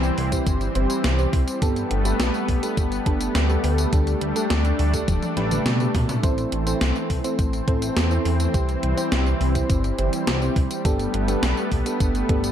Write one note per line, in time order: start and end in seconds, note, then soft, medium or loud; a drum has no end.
0.00 0.11 C2 medium
0.00 1.60 E3 medium
0.00 6.20 G3 medium
0.00 1.58 C4 medium
0.00 tambourine soft
0.18 0.40 C2 loud
0.18 open hi-hat medium
0.32 0.72 C4 medium
0.32 0.72 E4 medium
0.32 0.72 G4 medium
0.32 0.72 C5 loud
0.32 kick medium
0.32 closed hi-hat medium
0.32 tambourine medium
0.47 0.69 G1 loud
0.47 kick loud
0.47 closed hi-hat medium
0.47 tambourine medium
0.61 closed hi-hat soft
0.61 tambourine soft
0.75 0.87 G1 loud
0.75 1.15 C4 medium
0.75 1.15 E4 medium
0.75 1.15 G4 medium
0.75 1.15 C5 loud
0.75 closed hi-hat medium
0.90 closed hi-hat medium
0.90 tambourine medium
1.04 1.26 C2 medium
1.04 snare loud
1.04 closed hi-hat medium
1.04 tambourine medium
1.19 1.58 C4 medium
1.19 1.58 E4 medium
1.19 1.58 G4 medium
1.19 1.58 C5 medium
1.19 tambourine soft
1.33 1.44 C2 medium
1.33 kick loud
1.33 open hi-hat medium
1.48 closed hi-hat medium
1.48 tambourine medium
1.62 1.84 G1 loud
1.62 8.50 A3 medium
1.62 2.02 B3 loud
1.62 3.90 B3 loud
1.62 2.02 D4 medium
1.62 2.02 G4 medium
1.62 2.02 A4 loud
1.62 kick loud
1.62 closed hi-hat medium
1.62 tambourine medium
1.76 closed hi-hat soft
1.76 tambourine soft
1.91 2.13 G1 medium
1.91 closed hi-hat medium
2.05 2.16 B3 loud
2.05 2.16 D4 medium
2.05 2.16 G4 medium
2.05 2.16 A4 loud
2.05 closed hi-hat medium
2.05 tambourine medium
2.20 2.31 B1 medium
2.20 snare loud
2.20 closed hi-hat medium
2.20 tambourine soft
2.34 tambourine soft
2.48 2.60 B1 medium
2.48 kick medium
2.48 open hi-hat medium
2.63 3.03 B3 medium
2.63 3.03 D4 medium
2.63 3.03 G4 medium
2.63 3.03 A4 loud
2.63 closed hi-hat medium
2.63 tambourine medium
2.77 3.00 G1 medium
2.77 kick loud
2.77 closed hi-hat medium
2.77 tambourine medium
2.92 closed hi-hat soft
2.92 tambourine soft
3.06 3.28 G1 medium
3.06 3.46 B3 medium
3.06 3.46 D4 medium
3.06 3.46 G4 medium
3.06 3.46 A4 loud
3.06 kick loud
3.06 closed hi-hat medium
3.21 closed hi-hat medium
3.21 tambourine medium
3.35 3.57 D2 medium
3.35 snare loud
3.35 closed hi-hat medium
3.35 tambourine soft
3.49 3.89 B3 medium
3.49 3.89 D4 medium
3.49 3.89 G4 medium
3.49 3.89 A4 medium
3.49 tambourine soft
3.64 3.86 D2 loud
3.64 open hi-hat medium
3.78 closed hi-hat medium
3.78 tambourine medium
3.93 4.15 D2 medium
3.93 4.32 A3 loud
3.93 6.21 D4 medium
3.93 4.32 D4 medium
3.93 4.32 G4 medium
3.93 4.32 A4 loud
3.93 kick loud
3.93 closed hi-hat medium
3.93 tambourine soft
4.07 closed hi-hat soft
4.07 tambourine soft
4.21 4.33 D2 medium
4.21 closed hi-hat medium
4.36 4.47 A3 loud
4.36 4.47 D4 medium
4.36 4.47 G4 medium
4.36 4.47 A4 loud
4.36 closed hi-hat medium
4.36 tambourine medium
4.50 4.73 D2 medium
4.50 snare loud
4.50 closed hi-hat medium
4.50 tambourine soft
4.65 closed hi-hat soft
4.65 tambourine soft
4.79 5.02 D2 loud
4.79 open hi-hat medium
4.94 5.33 A3 medium
4.94 5.33 D4 medium
4.94 5.33 G4 medium
4.94 5.33 A4 loud
4.94 kick medium
4.94 closed hi-hat medium
4.94 tambourine medium
5.08 5.19 D1 loud
5.08 kick loud
5.08 closed hi-hat medium
5.08 high tom medium
5.08 tambourine soft
5.22 closed hi-hat soft
5.22 high tom medium
5.22 tambourine soft
5.37 5.59 A1 medium
5.37 5.48 A3 medium
5.37 5.48 D4 medium
5.37 5.48 G4 medium
5.37 5.48 B4 loud
5.37 snare soft
5.37 closed hi-hat medium
5.37 high tom medium
5.51 5.77 A3 medium
5.51 5.77 D4 medium
5.51 5.77 G4 medium
5.51 5.77 B4 loud
5.51 closed hi-hat medium
5.51 mid tom medium
5.51 tambourine medium
5.66 5.88 B2 medium
5.66 snare loud
5.66 closed hi-hat medium
5.66 mid tom medium
5.66 tambourine soft
5.80 5.98 A3 medium
5.80 5.98 D4 medium
5.80 5.98 G4 medium
5.80 5.98 B4 medium
5.80 closed hi-hat soft
5.80 tambourine soft
5.95 6.17 B2 loud
5.95 kick loud
5.95 mid tom loud
5.95 open hi-hat medium
6.09 closed hi-hat medium
6.09 mid tom medium
6.09 tambourine medium
6.23 6.46 A1 loud
6.23 10.81 E3 medium
6.23 10.81 C4 medium
6.23 6.63 C4 loud
6.23 6.63 E4 medium
6.23 6.63 A4 medium
6.23 6.63 C5 loud
6.23 kick loud
6.23 closed hi-hat medium
6.23 tambourine soft
6.38 closed hi-hat soft
6.38 tambourine soft
6.52 6.75 A1 medium
6.52 closed hi-hat medium
6.67 6.78 C4 medium
6.67 6.78 E4 medium
6.67 6.78 A4 medium
6.67 6.78 C5 loud
6.67 closed hi-hat medium
6.67 tambourine medium
6.81 6.92 C2 medium
6.81 snare loud
6.81 closed hi-hat medium
6.81 tambourine soft
6.96 tambourine soft
7.10 7.21 C2 medium
7.10 kick medium
7.10 open hi-hat medium
7.24 7.64 C4 medium
7.24 7.64 E4 medium
7.24 7.64 A4 medium
7.24 7.64 C5 medium
7.24 closed hi-hat medium
7.24 tambourine medium
7.39 7.61 A1 medium
7.39 kick loud
7.39 closed hi-hat medium
7.39 tambourine soft
7.53 closed hi-hat soft
7.53 tambourine soft
7.68 7.90 A1 medium
7.68 8.08 C4 medium
7.68 8.08 E4 medium
7.68 8.07 A4 medium
7.68 8.08 C5 loud
7.68 kick loud
7.68 closed hi-hat medium
7.82 closed hi-hat medium
7.82 tambourine medium
7.97 8.19 E2 medium
7.97 snare loud
7.97 closed hi-hat medium
7.97 tambourine soft
8.11 8.51 C4 medium
8.11 8.51 E4 medium
8.11 8.51 A4 medium
8.11 8.51 C5 medium
8.11 tambourine soft
8.25 8.48 E2 loud
8.25 open hi-hat medium
8.40 closed hi-hat medium
8.40 tambourine medium
8.54 8.76 C2 medium
8.54 12.52 G3 medium
8.54 8.94 C4 loud
8.54 8.94 E4 medium
8.54 8.94 G4 medium
8.54 8.94 C5 loud
8.54 kick loud
8.54 closed hi-hat medium
8.54 tambourine soft
8.69 closed hi-hat soft
8.69 tambourine soft
8.83 8.94 C2 medium
8.83 closed hi-hat medium
8.97 9.09 C4 loud
8.97 9.09 E4 medium
8.97 9.09 G4 medium
8.97 9.09 C5 loud
8.97 closed hi-hat medium
8.97 tambourine medium
9.12 9.34 C2 medium
9.12 snare loud
9.12 closed hi-hat medium
9.12 tambourine soft
9.26 tambourine soft
9.41 9.63 C2 loud
9.41 open hi-hat medium
9.55 9.95 C4 medium
9.55 9.95 E4 medium
9.55 9.95 G4 medium
9.55 9.95 C5 loud
9.55 kick medium
9.55 closed hi-hat medium
9.55 tambourine medium
9.70 9.92 G1 loud
9.70 kick loud
9.70 closed hi-hat medium
9.70 tambourine soft
9.84 closed hi-hat soft
9.84 tambourine soft
9.98 10.10 G1 loud
9.98 10.38 C4 medium
9.98 10.38 E4 medium
9.98 10.38 G4 medium
9.98 10.38 C5 loud
9.98 closed hi-hat medium
10.13 closed hi-hat medium
10.13 tambourine medium
10.27 10.50 C2 medium
10.27 snare loud
10.27 closed hi-hat medium
10.27 tambourine soft
10.42 10.81 C4 medium
10.42 10.81 E4 medium
10.42 10.81 G4 medium
10.42 10.81 C5 medium
10.42 tambourine soft
10.56 10.67 C2 medium
10.56 kick loud
10.56 open hi-hat medium
10.71 closed hi-hat medium
10.71 tambourine medium
10.85 11.07 G1 loud
10.85 12.52 A3 medium
10.85 11.25 B3 loud
10.85 12.52 B3 medium
10.85 11.25 D4 medium
10.85 11.25 G4 medium
10.85 11.25 A4 loud
10.85 kick loud
10.85 closed hi-hat medium
10.85 tambourine soft
10.99 closed hi-hat soft
10.99 tambourine soft
11.14 11.36 G1 medium
11.14 closed hi-hat medium
11.28 11.39 B3 loud
11.28 11.39 D4 medium
11.28 11.39 G4 medium
11.28 11.39 A4 loud
11.28 closed hi-hat medium
11.28 tambourine medium
11.43 11.54 B1 medium
11.43 snare loud
11.43 closed hi-hat medium
11.43 tambourine soft
11.57 tambourine soft
11.72 11.83 B1 medium
11.72 kick medium
11.72 open hi-hat medium
11.86 12.26 B3 medium
11.86 12.26 D4 medium
11.86 12.26 G4 medium
11.86 12.26 A4 loud
11.86 closed hi-hat medium
11.86 tambourine medium
12.00 12.23 G1 medium
12.00 kick loud
12.00 closed hi-hat medium
12.00 tambourine soft
12.15 closed hi-hat soft
12.15 tambourine soft
12.29 12.51 G1 medium
12.29 12.52 B3 medium
12.29 12.52 D4 medium
12.29 12.52 G4 medium
12.29 12.52 A4 loud
12.29 kick loud
12.29 closed hi-hat medium
12.44 closed hi-hat medium
12.44 tambourine medium